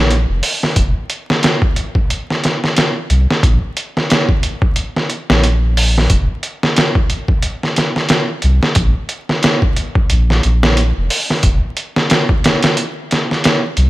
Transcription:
Already playing: sub bass A#1
0.10 closed hi-hat
0.29 sub bass F1
0.43 open hi-hat
0.63 snare
0.76 sub bass F1, kick, closed hi-hat
1.10 closed hi-hat
1.30 snare
1.43 snare, closed hi-hat
1.62 kick
1.76 closed hi-hat
1.95 kick
2.10 closed hi-hat
2.30 snare
2.44 snare, closed hi-hat
2.64 snare
2.77 snare, closed hi-hat
3.10 sub bass C2, closed hi-hat
3.31 snare
3.43 sub bass A#1, kick, closed hi-hat
3.77 closed hi-hat
3.97 snare
4.10 snare, closed hi-hat
4.29 kick
4.43 closed hi-hat
4.62 kick
4.76 closed hi-hat
4.97 snare
5.10 closed hi-hat
5.30 sub bass A#1, snare
5.44 closed hi-hat
5.77 open hi-hat
5.98 snare
6.10 sub bass F1, kick, closed hi-hat
6.43 closed hi-hat
6.63 snare
6.77 snare, closed hi-hat
6.95 kick
7.10 closed hi-hat
7.28 kick
7.42 closed hi-hat
7.63 snare
7.76 snare, closed hi-hat
7.96 snare
8.09 snare, closed hi-hat
8.42 sub bass C2, closed hi-hat
8.63 snare
8.75 sub bass A#1, kick, closed hi-hat
9.09 closed hi-hat
9.29 snare
9.43 snare, closed hi-hat
9.62 kick
9.76 closed hi-hat
9.95 kick
10.10 sub bass A#1, closed hi-hat
10.30 snare
10.43 sub bass A#1, closed hi-hat
10.63 snare
10.77 closed hi-hat
10.97 sub bass F1
11.10 open hi-hat
11.30 snare
11.43 sub bass F1, kick, closed hi-hat
11.77 closed hi-hat
11.96 snare
12.10 snare, closed hi-hat
12.29 kick
12.44 snare, closed hi-hat
12.63 snare, closed hi-hat
12.77 closed hi-hat
13.11 snare, closed hi-hat
13.31 snare
13.44 snare, closed hi-hat
13.77 sub bass C2, closed hi-hat

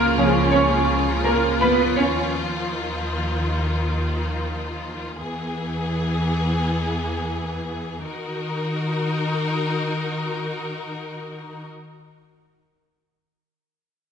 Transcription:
Already playing: string section C#2 C#3 F3 F4, grand piano A#3 C#4 A#4 C#5
0.18 grand piano C#3 F3 C#4
0.52 grand piano C#4 C#5
1.24 grand piano A#3 A#4
1.61 grand piano B3 B4
1.96 string section D#2 D#3, grand piano C#4 C#5
5.18 string section E2 E3 B3 G#4
8.05 string section D#3 D#4 F#4 A#4

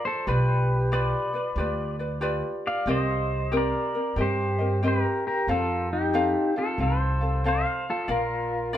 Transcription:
Already playing: ukulele F4 D5 F5
0.05 pedal steel guitar A4 C5
0.27 upright bass B1, ukulele F4 G4 B4 D5, pedal steel guitar G4 B4
0.92 ukulele F4 G4 B4 D5, pedal steel guitar B4 D5
1.34 ukulele F4 B4 D5
1.56 upright bass D2, ukulele F4 G4 B4 D5
1.99 ukulele F4 B4 D5
2.21 ukulele F4 G4 B4 D5
2.67 pedal steel guitar D5 F5
2.86 upright bass C2, ukulele C4 G4 A#4 D#5
2.91 pedal steel guitar C5 D#5
3.52 ukulele C4 G4 A#4
3.57 pedal steel guitar A#4 D5
3.95 ukulele C4 A#4
4.16 upright bass G2, ukulele C4 G4 A#4 D#5
4.21 pedal steel guitar G4 C5
4.59 ukulele C4 A#4 D#5
4.83 ukulele C4 G4 A#4 D#5
4.87 pedal steel guitar G4 A#4
5.27 pedal steel guitar G4 A#4
5.47 upright bass F2, ukulele C4 A4 C5 F5, pedal steel guitar F4 A4
5.93 pedal steel guitar D#4 G4
6.13 ukulele C4 A4 C5 F5
6.56 ukulele C4 A4 F5, pedal steel guitar F4 A4
6.78 upright bass C2, ukulele C4 A4 C5 F5
6.83 pedal steel guitar A4 C5
7.21 ukulele C4 A4 F5
7.44 ukulele C4 A4 C5 F5
7.48 pedal steel guitar C5 F5
7.90 pedal steel guitar F4 A4
8.08 upright bass A#1, ukulele F4 A#4 D5 F5, pedal steel guitar F4 A#4
8.73 ukulele F4 D5

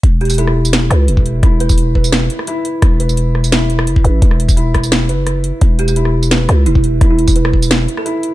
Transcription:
0.03 808-style bass E1, kick, closed hi-hat
0.21 kalimba G4, closed hi-hat
0.25 closed hi-hat
0.30 kalimba G4, closed hi-hat, tambourine
0.34 closed hi-hat
0.38 felt piano E4, kalimba A4, closed hi-hat
0.47 cross-stick
0.65 tambourine
0.73 snare, closed hi-hat
0.90 808-style bass C#2, felt piano B4, cross-stick, closed hi-hat
1.08 808-style bass E1, closed hi-hat
1.17 kick
1.26 closed hi-hat
1.43 808-style bass E1, felt piano E4, kick, cross-stick, closed hi-hat
1.60 kalimba B4, closed hi-hat
1.69 kick, tambourine
1.78 closed hi-hat
1.95 felt piano B4, kick
2.04 tambourine
2.12 snare, closed hi-hat
2.30 closed hi-hat
2.39 cross-stick
2.47 felt piano E4, closed hi-hat
2.65 closed hi-hat
2.82 808-style bass E1, kick, cross-stick, closed hi-hat
3.00 felt piano B4, closed hi-hat
3.09 tambourine
3.17 closed hi-hat
3.35 cross-stick
3.44 tambourine
3.52 felt piano E4, snare, closed hi-hat
3.70 closed hi-hat
3.79 cross-stick
3.87 808-style bass F#1, closed hi-hat
3.96 kick
4.04 808-style bass A1, felt piano B4, closed hi-hat
4.22 808-style bass E1, kick, closed hi-hat
4.31 cross-stick
4.40 closed hi-hat
4.49 kick, tambourine
4.57 felt piano E4, closed hi-hat
4.74 kick, cross-stick, closed hi-hat
4.83 tambourine
4.92 snare, closed hi-hat
5.09 808-style bass F#1, felt piano B4, closed hi-hat
5.27 cross-stick, closed hi-hat
5.44 closed hi-hat
5.61 808-style bass E1, kick, closed hi-hat
5.79 kalimba G4, closed hi-hat
5.88 kalimba G4, tambourine
5.96 felt piano E4, closed hi-hat
6.05 cross-stick
6.23 tambourine
6.31 felt piano B4, snare, closed hi-hat
6.49 808-style bass C#2, cross-stick, closed hi-hat
6.66 808-style bass E1, kalimba E4, closed hi-hat
6.75 kick
6.84 closed hi-hat
7.01 808-style bass E1, felt piano E4, kick, cross-stick, closed hi-hat
7.10 kalimba E4
7.19 closed hi-hat
7.27 kick, tambourine
7.36 felt piano B4, closed hi-hat
7.45 cross-stick
7.53 kick
7.62 tambourine
7.71 snare, closed hi-hat
7.88 closed hi-hat
7.97 kalimba A4, cross-stick
8.05 felt piano E4, closed hi-hat
8.23 closed hi-hat

